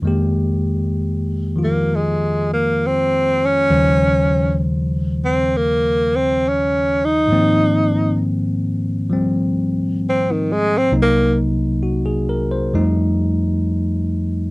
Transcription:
0.02 F2 D#3 G#3 A#3
0.07 G4
1.56 D#3 F3 F4
1.64 A#3
1.95 G#3
2.53 A#3
2.87 C4
3.45 C#4
3.70 D#2 C#3 D#3 F3 G3 C5
5.25 C4
5.57 A#3
6.16 C4
6.49 C#4
7.05 D#4
7.28 G#2 D#3 F3
7.32 A#3 C4
9.09 F3 G3 C4
10.09 C4
10.32 D#3
10.52 G#3
10.77 C4
10.92 C2 C3 F#3 A#3 D#4
11.02 A#3
11.83 F#4
12.06 G#4
12.29 A#4
12.51 C5
12.74 F2 F3 G3 A3 D#4

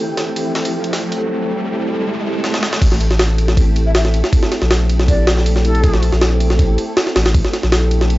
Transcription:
Already playing: G4 G5, riser
0.09 A#1
0.17 snare, ride
0.36 ride
0.55 snare, ride
0.65 A1, ride
0.84 ride
0.93 snare, ride
1.12 A1, ride
2.44 snare
2.54 snare
2.63 snare
2.73 snare
2.82 A1, kick, crash, ride
2.92 snare
3.01 ride
3.11 snare
3.19 snare, ride
3.38 ride
3.48 snare
3.57 kick, ride
3.76 ride
3.86 E5
3.95 E5, snare, ride
4.05 snare
4.14 ride
4.24 snare
4.33 kick, ride
4.43 snare
4.52 snare, ride
4.62 A#1 A3 C4 E4 G4 A4, snare
4.71 snare, ride
4.89 ride
5.00 snare
5.08 D5, kick, ride
5.27 snare, ride
5.37 snare
5.46 ride
5.56 snare
5.65 A4, ride
5.75 ride
5.84 kick, ride
5.94 snare
6.03 ride
6.12 A#1, snare
6.21 snare, ride
6.40 ride
6.50 snare
6.59 kick, ride
6.69 A1
6.78 ride
6.97 snare, ride
7.07 snare
7.16 A1, snare, ride
7.26 snare, ride
7.35 kick, ride
7.45 snare
7.53 snare, ride
7.63 A#1 A3 C4 E4 G4 A4, snare
7.72 snare, ride
7.91 ride
8.01 snare
8.10 ride

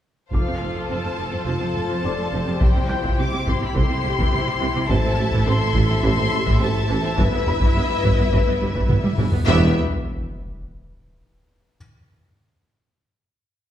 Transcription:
0.31 F1 F2 F3 F4 A4 C5 F5 D6, taiko
0.46 F2 C4
0.61 F1 F2 A3
0.75 F2 F3
0.88 F1 F2 C4 A5
1.03 F2 A3
1.16 F1 F2 F3
1.31 F2 C4
1.45 F1 F2 F3 F4 A5
1.59 F2 C4
1.74 F1 F2 A3
1.88 F2 F3
2.02 F1 F2 C4 A4 D5 D6
2.17 F2 A3
2.31 F1 F2 F3 G4
2.46 F2 C4
2.60 C2 C3 E3 E4 G4 G5, taiko
2.74 C3 C4
2.88 C2 C3 G3 F4 G6
3.02 C3 E3, taiko
3.17 C2 C3 C4 G4 D6
3.32 C3 G3
3.46 C2 C3 E3 C6, taiko
3.60 C3 C4 B5
3.75 C2 C3 E3 A4 C6, taiko
3.89 C3 C4
4.03 C2 C3 G3 G4
4.18 C3 E3, taiko
4.32 C2 C3 C4 E4
4.46 C3 G3
4.60 C2 C3 E3
4.75 C3 C4
4.89 A1 A2 E3 A4 C5 E5 A5, taiko
5.04 A2 C4
5.18 A1 A2 A3
5.32 A2 E3, taiko
5.46 A1 A2 C4 A4 C6
5.60 A2 A3
5.75 A1 A2 E3, taiko
5.89 A2 C4
6.03 A1 A2 E3 E4 C6, taiko
6.17 A2 C4
6.31 A1 A2 A3
6.35 G4
6.46 A2 E3, taiko
6.60 A1 A2 C4 A4 A5
6.74 A2 A3
6.88 A1 A2 E3
7.03 A2 C4
7.17 G1 G2 E3 E4 B4 E5, taiko, reverse cymbal
7.31 G2 B3
7.46 G1 G2 G3 B4 B5, taiko low
7.60 G2 E3, taiko
7.75 G1 G2 B3
7.89 G2 G3
8.03 G1 G2 E3, taiko
8.18 G2 B3
8.32 G1 G2 E3, taiko
8.46 G2 B3
8.60 G1 G2 G3
8.75 G2 E3, taiko
8.89 G1 G2 B3, taiko mid
9.04 G2 G3, taiko high
9.18 G1 G2 E3, taiko low-mid
9.32 G2 B3, taiko low
9.46 E1 E2 G3 B3 G4 B4 E5, sub drop

